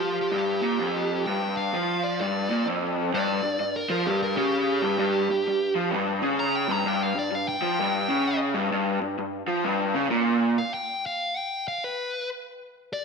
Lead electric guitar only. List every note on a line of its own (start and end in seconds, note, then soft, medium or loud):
0.00 0.17 G4 medium
0.21 1.25 G4 medium
1.26 1.55 G5 loud
1.57 2.02 F5 medium
2.03 2.20 D5 medium
2.21 2.66 D5 medium
3.15 3.74 D5 loud
3.76 3.90 A#4 medium
3.92 4.06 A#4 medium
4.06 4.22 G4 medium
4.23 4.37 A#4 medium
4.37 5.73 G4 medium
6.40 6.55 A#5 loud
6.55 6.71 G5 medium
6.71 6.88 A#5 loud
6.88 7.03 G5 medium
7.03 7.17 F5 medium
7.19 7.33 D5 medium
7.35 7.48 F5 medium
7.48 8.38 G5 loud
10.58 10.73 F5 medium
10.74 11.04 G5 medium
11.06 11.37 F5 medium
11.37 11.66 G5 medium
11.68 11.82 F5 medium
11.84 12.28 B4 medium
12.93 13.05 D5 medium